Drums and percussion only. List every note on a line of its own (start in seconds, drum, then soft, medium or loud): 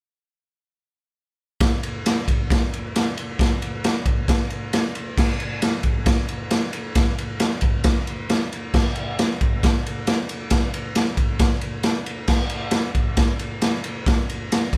1.60 kick loud
1.60 snare loud
1.60 ride medium
1.83 ride medium
2.06 snare loud
2.06 ride loud
2.28 kick medium
2.28 ride medium
2.50 kick loud
2.50 snare loud
2.50 ride loud
2.73 ride medium
2.96 snare loud
2.96 ride loud
3.17 ride medium
3.39 kick loud
3.39 snare loud
3.39 ride loud
3.62 ride medium
3.84 snare loud
3.84 ride loud
4.06 kick medium
4.06 ride medium
4.28 kick loud
4.28 snare loud
4.28 ride medium
4.50 ride medium
4.73 snare loud
4.73 ride medium
4.95 ride medium
5.18 kick loud
5.18 snare loud
5.18 crash loud
5.40 ride medium
5.62 snare loud
5.62 ride loud
5.83 kick medium
5.83 ride medium
6.06 kick loud
6.06 snare loud
6.06 ride loud
6.28 ride medium
6.51 snare loud
6.51 ride medium
6.73 ride medium
6.95 kick loud
6.95 snare loud
6.95 ride loud
7.18 ride medium
7.40 snare loud
7.40 ride loud
7.61 kick medium
7.61 ride medium
7.84 kick loud
7.84 snare loud
7.84 ride loud
8.07 ride medium
8.29 snare loud
8.29 ride medium
8.52 ride medium
8.74 kick loud
8.74 snare loud
8.74 crash loud
8.95 ride medium
9.19 snare loud
9.19 ride loud
9.41 kick medium
9.41 ride medium
9.63 kick loud
9.63 snare loud
9.63 ride loud
9.86 ride medium
10.07 snare loud
10.07 ride loud
10.29 ride medium
10.50 kick loud
10.50 snare loud
10.50 ride loud
10.74 ride medium
10.95 snare loud
10.95 ride loud
11.17 kick medium
11.17 ride medium
11.39 kick loud
11.39 snare loud
11.39 ride loud
11.61 ride medium
11.83 snare loud
11.83 ride medium
12.06 ride medium
12.27 kick loud
12.27 snare loud
12.27 crash loud
12.49 ride medium
12.71 snare loud
12.71 ride loud
12.95 kick medium
12.95 ride medium
13.17 kick loud
13.17 snare loud
13.17 ride medium
13.39 ride medium
13.62 snare loud
13.62 ride medium
13.84 ride medium
14.06 kick loud
14.06 snare loud
14.06 ride medium
14.29 ride medium
14.52 snare loud
14.52 ride loud
14.73 kick medium
14.73 ride medium